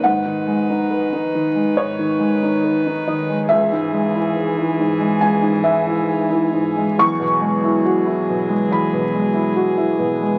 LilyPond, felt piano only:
<<
  \new Staff \with { instrumentName = "Felt piano" } { \time 4/4 \key gis \minor \tempo 4 = 69 fis''2 cis''4. dis''8 | e''2 gis''8 e''4. | cis'''2 b''2 | }
  \new Staff \with { instrumentName = "Felt piano" } { \clef bass \time 4/4 \key gis \minor gis,16 dis16 gis16 dis'16 b'16 dis'16 dis16 gis16 gis,16 dis16 gis16 dis'16 b'16 dis'16 dis16 gis16 | cis,16 gis,16 gis16 e'16 gis'16 e'16 gis,16 gis16 cis,16 gis,16 gis16 e'16 gis'16 e'16 gis,16 gis16 | e,16 b,16 gis16 e'16 fis'16 e'16 b,16 gis16 e,16 b,16 gis16 e'16 fis'16 e'16 b,16 gis16 | }
>>